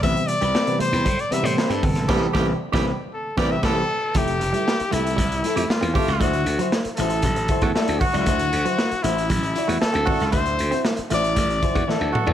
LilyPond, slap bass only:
\new Staff \with { instrumentName = "Slap bass" } { \clef bass \time 4/4 \key d \mixolydian \tempo 4 = 116 a,,16 r8 c,16 r8. e,16 a,16 r8 a,16 r16 g,16 g,,16 gis,,16 | a,,8 a,,8 r16 a,,8 r8. a,,8 a,,8 r8 | f,,8 f,,16 r8. c,8 c,8 r16 f,16 r16 e,16 r16 cis,16 | d,8 d,16 r8. a,,8 a,,8 r16 e,16 r16 d,16 r16 cis,16 |
d,8 d,16 r8. a,,8 a,,8 r16 e,16 r16 d,16 r16 cis,16 | d,8 d,16 r8. a,,8 a,,8 r16 e,16 r16 d,16 r16 e,16 | }